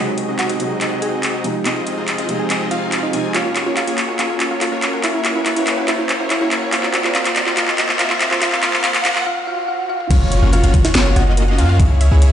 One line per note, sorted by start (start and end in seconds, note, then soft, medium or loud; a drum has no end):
0.00 0.56 C3 medium
0.00 0.57 F#3 medium
0.00 0.58 G#3 medium
0.00 0.26 C4 medium
0.00 0.26 D#4 medium
0.00 0.58 D#4 medium
0.00 0.12 F#4 medium
0.00 0.26 F#4 medium
0.00 0.26 G#4 medium
0.00 0.26 D#5 medium
0.00 0.12 F#5 loud
0.00 riser medium
0.18 closed hi-hat medium
0.28 0.47 G#1 loud
0.28 0.47 C4 medium
0.28 0.47 D#4 medium
0.28 0.47 F#4 medium
0.28 0.47 G#4 medium
0.28 0.47 D#5 medium
0.39 0.62 F#4 medium
0.39 0.62 F#5 medium
0.39 clap medium
0.39 closed hi-hat medium
0.49 0.79 G#1 medium
0.49 0.79 C4 medium
0.49 0.79 D#4 medium
0.49 0.79 F#4 medium
0.49 0.79 G#4 medium
0.49 0.79 D#5 loud
0.49 closed hi-hat medium
0.58 1.41 C3 medium
0.58 1.42 F#3 medium
0.58 1.42 G#3 medium
0.58 closed hi-hat medium
0.62 1.43 D#4 medium
0.81 1.41 G#1 loud
0.81 1.43 C4 loud
0.81 1.43 D#4 medium
0.81 1.43 F#4 medium
0.81 1.43 G#4 medium
0.81 1.43 D#5 loud
0.81 clap medium
0.81 closed hi-hat medium
1.02 1.26 G#4 medium
1.02 1.26 G#5 medium
1.02 closed hi-hat medium
1.23 clap medium
1.23 closed hi-hat medium
1.43 1.62 C3 loud
1.43 1.63 F3 medium
1.43 1.63 G#3 medium
1.43 1.64 D#4 loud
1.43 closed hi-hat medium
1.64 2.25 C3 medium
1.64 2.26 F3 medium
1.64 2.27 G#3 medium
1.64 1.95 C4 medium
1.64 1.95 D#4 medium
1.64 1.95 F4 medium
1.64 1.95 G#4 medium
1.64 1.95 D#5 medium
1.64 clap medium
1.64 closed hi-hat medium
1.68 2.28 D#4 medium
1.87 closed hi-hat medium
1.97 2.16 F1 loud
1.97 2.16 C4 medium
1.97 2.16 D#4 medium
1.97 2.16 F4 medium
1.97 2.16 G#4 medium
1.97 2.16 D#5 medium
2.08 clap medium
2.08 closed hi-hat medium
2.18 2.48 F1 loud
2.18 2.48 C4 medium
2.18 2.48 D#4 medium
2.18 2.48 F4 medium
2.18 2.48 G#4 medium
2.18 2.48 D#5 medium
2.18 closed hi-hat medium
2.27 3.10 C3 medium
2.27 3.11 F3 medium
2.27 3.11 G#3 medium
2.27 closed hi-hat medium
2.31 3.12 D#4 loud
2.39 2.63 G#4 medium
2.39 2.63 G#5 loud
2.50 2.69 C4 loud
2.50 2.69 D#4 medium
2.50 2.69 F4 medium
2.50 2.69 G#4 medium
2.50 2.69 D#5 loud
2.50 clap medium
2.50 closed hi-hat medium
2.71 3.11 C4 loud
2.71 3.11 D#4 medium
2.71 2.95 F4 medium
2.71 3.11 F4 medium
2.71 3.11 G#4 medium
2.71 2.95 F5 medium
2.71 3.11 F5 loud
2.71 closed hi-hat medium
2.92 clap medium
2.92 closed hi-hat medium
3.03 3.26 D#4 medium
3.03 3.26 D#5 loud
3.12 3.32 C3 loud
3.12 3.32 F3 medium
3.12 3.32 G#3 medium
3.12 3.32 C4 medium
3.12 3.32 D#4 medium
3.12 3.33 D#4 loud
3.12 3.32 F4 medium
3.12 3.32 G#4 medium
3.12 3.32 G#5 medium
3.12 closed hi-hat medium
3.34 3.64 A#3 medium
3.34 3.64 C#4 medium
3.34 3.37 F4 medium
3.34 3.50 F4 medium
3.34 3.64 F4 medium
3.34 3.64 F#4 medium
3.34 3.64 C#5 medium
3.34 3.50 F5 medium
3.34 clap medium
3.34 closed hi-hat medium
3.45 3.48 F4 medium
3.56 3.60 F#4 medium
3.56 clap medium
3.56 closed hi-hat medium
3.66 3.85 F#1 loud
3.66 3.85 A#3 medium
3.66 3.85 C#4 medium
3.66 3.69 F4 medium
3.66 3.85 F4 medium
3.66 3.85 F#4 medium
3.66 3.85 C#5 medium
3.77 4.00 F4 medium
3.77 3.81 F5 medium
3.77 4.00 F5 medium
3.77 clap medium
3.77 closed hi-hat medium
3.87 4.17 F#1 loud
3.87 4.17 A#3 medium
3.87 4.17 C#4 medium
3.87 4.17 F4 medium
3.87 3.92 F4 medium
3.87 4.17 F#4 medium
3.87 4.17 C#5 medium
3.87 closed hi-hat medium
3.98 4.03 A#4 medium
3.98 clap medium
3.98 closed hi-hat medium
4.09 4.15 F#5 medium
4.19 4.49 F#1 loud
4.19 4.48 A#3 medium
4.19 4.48 C#4 medium
4.19 4.22 F4 loud
4.19 4.48 F4 medium
4.19 4.35 F4 medium
4.19 4.48 F#4 medium
4.19 4.48 C#5 medium
4.19 4.35 F5 loud
4.19 clap medium
4.19 closed hi-hat medium
4.30 4.32 F4 medium
4.40 4.45 F#4 medium
4.40 clap medium
4.40 closed hi-hat medium
4.51 4.70 F#1 medium
4.51 4.69 A#3 medium
4.51 4.69 C#4 medium
4.51 4.54 F4 loud
4.51 4.69 F4 medium
4.51 4.69 F#4 medium
4.51 4.69 C#5 medium
4.61 4.85 F4 medium
4.61 4.66 F5 medium
4.61 4.85 F5 medium
4.61 clap medium
4.61 closed hi-hat medium
4.72 5.02 F#2 loud
4.72 5.01 A#3 medium
4.72 5.01 C#4 medium
4.72 5.01 F4 medium
4.72 4.77 F4 loud
4.72 5.01 F#4 medium
4.72 5.01 C#5 medium
4.82 4.87 A#4 medium
4.82 clap medium
4.82 closed hi-hat medium
4.93 5.00 F#5 medium
5.04 5.33 C#2 loud
5.04 5.33 A#3 medium
5.04 5.33 C#4 medium
5.04 5.06 E4 loud
5.04 5.33 E4 medium
5.04 5.19 E4 medium
5.04 5.33 F#4 medium
5.04 5.33 C#5 medium
5.04 5.19 E5 medium
5.04 clap medium
5.04 closed hi-hat medium
5.14 5.17 E4 medium
5.25 5.29 F#4 medium
5.25 clap medium
5.25 closed hi-hat medium
5.35 5.54 C#2 medium
5.35 5.54 A#3 medium
5.35 5.54 C#4 medium
5.35 5.54 E4 medium
5.35 5.38 E4 loud
5.35 5.54 F#4 medium
5.35 5.54 C#5 medium
5.46 5.69 E4 medium
5.46 5.50 E5 medium
5.46 5.69 E5 medium
5.46 clap medium
5.46 closed hi-hat medium
5.56 5.86 C#2 loud
5.56 5.86 A#3 medium
5.56 5.86 C#4 medium
5.56 5.86 E4 medium
5.56 5.61 E4 medium
5.56 5.86 F#4 medium
5.56 5.86 C#5 medium
5.56 closed hi-hat medium
5.67 5.72 A#4 medium
5.67 clap medium
5.67 closed hi-hat medium
5.78 5.84 F#5 loud
5.88 6.18 C#2 medium
5.88 6.17 A#3 medium
5.88 6.17 C#4 medium
5.88 5.91 E4 medium
5.88 6.17 E4 medium
5.88 6.04 E4 medium
5.88 6.17 F#4 medium
5.88 6.17 C#5 medium
5.88 6.04 E5 loud
5.88 clap medium
5.88 closed hi-hat medium
5.99 6.01 E4 loud
6.09 6.14 F#4 medium
6.09 clap medium
6.09 closed hi-hat medium
6.20 6.39 C#2 loud
6.20 6.38 A#3 medium
6.20 6.38 C#4 medium
6.20 6.38 E4 medium
6.20 6.23 E4 loud
6.20 6.38 F#4 medium
6.20 6.38 C#5 medium
6.30 6.54 E4 medium
6.30 6.35 E5 medium
6.30 6.54 E5 medium
6.30 clap medium
6.30 closed hi-hat medium
6.41 6.71 C#2 loud
6.41 6.70 A#3 medium
6.41 6.70 C#4 medium
6.41 6.46 E4 loud
6.41 6.70 E4 medium
6.41 6.70 F#4 medium
6.41 6.70 C#5 loud
6.51 6.56 A#4 medium
6.51 clap medium
6.51 closed hi-hat medium
6.62 6.69 F#5 medium
6.72 7.02 G#1 loud
6.72 7.02 A#3 medium
6.72 7.02 C4 medium
6.72 6.75 F4 loud
6.72 6.88 F4 medium
6.72 7.02 F4 medium
6.72 7.02 F#4 medium
6.72 7.02 C5 medium
6.72 6.88 F5 loud
6.72 clap medium
6.72 closed hi-hat medium
6.83 6.86 F4 medium
6.83 clap medium
6.94 6.98 F#4 medium
6.94 clap medium
6.94 closed hi-hat medium
7.04 7.13 G#1 loud
7.04 7.13 A#3 medium
7.04 7.13 C4 medium
7.04 7.07 F4 loud
7.04 7.13 F4 medium
7.04 7.13 F#4 medium
7.04 7.13 C5 medium
7.04 clap medium
7.15 7.45 G#1 loud
7.15 7.44 A#3 medium
7.15 7.44 C4 medium
7.15 7.18 F4 loud
7.15 7.30 F4 medium
7.15 7.44 F4 medium
7.15 7.44 F#4 medium
7.15 7.44 C5 medium
7.15 7.30 F5 loud
7.15 clap loud
7.15 closed hi-hat medium
7.25 7.28 F4 loud
7.25 clap medium
7.25 closed hi-hat medium
7.36 7.40 F#4 medium
7.36 clap loud
7.36 closed hi-hat medium
7.47 7.55 G#1 loud
7.47 7.55 A#3 medium
7.47 7.55 C4 medium
7.47 7.49 F4 loud
7.47 7.55 F4 medium
7.47 7.55 F#4 medium
7.47 7.55 C5 medium
7.47 clap medium
7.57 7.87 G#1 loud
7.57 7.86 A#3 medium
7.57 7.86 C4 medium
7.57 7.73 F4 medium
7.57 7.86 F4 medium
7.57 7.60 F4 loud
7.57 7.86 F#4 medium
7.57 7.86 C5 medium
7.57 7.73 F5 loud
7.57 clap loud
7.57 closed hi-hat medium
7.68 7.71 F4 loud
7.68 clap medium
7.78 7.83 F#4 medium
7.78 clap loud
7.78 closed hi-hat medium
7.89 8.01 G#2 loud
7.89 7.98 A#3 medium
7.89 7.98 C4 medium
7.89 7.92 F4 loud
7.89 7.98 F4 medium
7.89 7.98 F#4 medium
7.89 7.98 C5 medium
7.89 clap medium
7.99 8.29 G#1 loud
7.99 8.29 A#3 medium
7.99 8.29 C4 medium
7.99 8.02 F4 loud
7.99 8.15 F4 medium
7.99 8.29 F4 medium
7.99 8.29 F#4 medium
7.99 8.29 C5 medium
7.99 8.15 F5 loud
7.99 clap loud
7.99 closed hi-hat medium
8.10 8.13 F4 loud
8.10 clap medium
8.20 8.25 F4 medium
8.20 clap loud
8.20 closed hi-hat medium
8.31 8.40 A#3 medium
8.31 8.40 C4 medium
8.31 8.34 F4 loud
8.31 8.40 F4 medium
8.31 8.40 C5 medium
8.31 clap medium
8.41 8.61 F1 loud
8.41 8.61 A#3 medium
8.41 8.61 C4 medium
8.41 8.44 F4 loud
8.41 8.57 F4 medium
8.41 8.61 F4 medium
8.41 8.61 C5 medium
8.41 8.57 F5 loud
8.41 clap loud
8.41 closed hi-hat medium
8.52 8.55 F4 loud
8.52 clap medium
8.63 8.82 A#3 medium
8.63 8.82 C4 medium
8.63 8.65 F4 loud
8.63 8.78 F4 medium
8.63 8.82 F4 medium
8.63 8.82 C5 loud
8.63 8.78 F5 loud
8.63 clap loud
8.63 closed hi-hat medium
8.73 8.76 F4 loud
8.73 clap medium
8.84 9.03 A#3 medium
8.84 9.03 C4 medium
8.84 8.87 F4 loud
8.84 9.00 F4 medium
8.84 9.03 F4 medium
8.84 9.03 C5 medium
8.84 8.99 F5 loud
8.84 clap loud
8.84 closed hi-hat medium
8.95 8.97 F4 loud
8.95 clap medium
8.95 closed hi-hat medium
9.05 9.25 A#3 medium
9.05 9.24 C4 medium
9.05 9.21 F4 medium
9.05 9.08 F4 loud
9.05 9.24 F4 medium
9.05 9.25 C5 medium
9.05 9.21 F5 loud
9.05 clap loud
9.05 closed hi-hat medium
9.16 9.18 F4 loud
9.16 clap medium
9.26 9.42 F4 medium
9.26 9.42 F5 loud
9.26 swell medium
9.47 9.63 F4 medium
9.47 9.63 F5 loud
9.68 9.84 F4 medium
9.68 9.84 F5 loud
9.89 10.05 F4 medium
9.89 10.05 F5 loud
9.89 high tom medium
10.00 mid tom medium
10.11 10.40 F#1 medium
10.11 10.40 A#3 medium
10.11 10.40 C#4 medium
10.11 10.26 F4 medium
10.11 10.15 F4 medium
10.11 10.40 F4 medium
10.11 10.40 F#4 medium
10.11 10.40 C#5 medium
10.11 10.26 F5 loud
10.11 kick loud
10.11 closed hi-hat medium
10.11 crash loud
10.11 impact medium
10.21 10.24 F5 medium
10.32 10.39 C#5 loud
10.32 closed hi-hat medium
10.42 10.61 F#1 loud
10.42 10.61 A#3 medium
10.42 10.61 C#4 medium
10.42 10.61 F4 medium
10.42 10.61 F#4 medium
10.42 10.61 C#5 medium
10.42 10.45 F5 medium
10.53 10.76 F4 medium
10.53 10.57 A#4 medium
10.53 10.76 F5 loud
10.53 closed hi-hat medium
10.64 10.93 F#1 loud
10.64 10.93 A#3 medium
10.64 10.93 C#4 medium
10.64 10.93 F4 medium
10.64 10.93 F#4 medium
10.64 10.93 C#5 medium
10.64 10.93 C#5 loud
10.64 10.66 F5 loud
10.64 closed hi-hat medium
10.74 10.79 F4 medium
10.74 kick loud
10.74 closed hi-hat medium
10.85 10.91 F5 loud
10.85 snare medium
10.95 11.14 F#1 loud
10.95 11.14 A#3 loud
10.95 11.14 C#4 medium
10.95 11.00 F4 medium
10.95 11.14 F4 medium
10.95 11.14 F#4 medium
10.95 11.14 C#5 loud
10.95 snare loud
10.95 closed hi-hat medium
11.06 11.09 F5 medium
11.16 11.60 F#1 loud
11.16 11.56 A#3 loud
11.16 11.56 C#4 loud
11.16 11.56 F4 loud
11.16 11.40 F#4 medium
11.16 11.56 F#4 loud
11.16 11.23 C#5 loud
11.16 11.56 D#5 loud
11.16 11.40 F#5 medium
11.16 closed hi-hat medium
11.27 11.30 F5 medium
11.37 11.42 A#4 medium
11.37 closed hi-hat medium
11.48 11.51 F5 loud
11.58 11.78 F#2 medium
11.58 11.77 A#3 medium
11.58 11.77 C#4 medium
11.58 11.63 F4 medium
11.58 11.77 F4 medium
11.58 11.77 F#4 medium
11.58 11.77 F5 medium
11.58 closed hi-hat medium
11.69 11.76 F5 loud
11.80 12.09 C#2 medium
11.80 11.84 E4 medium
11.80 12.09 E4 medium
11.80 12.09 G#4 medium
11.80 12.09 C#5 medium
11.80 kick loud
11.80 closed hi-hat medium
11.90 11.93 G#5 medium
12.01 12.08 E5 loud
12.01 closed hi-hat medium
12.11 12.31 C#2 medium
12.11 12.30 E4 medium
12.11 12.30 G#4 medium
12.11 12.30 C#5 medium
12.11 12.14 G#5 medium
12.22 12.26 C#5 medium
12.22 closed hi-hat medium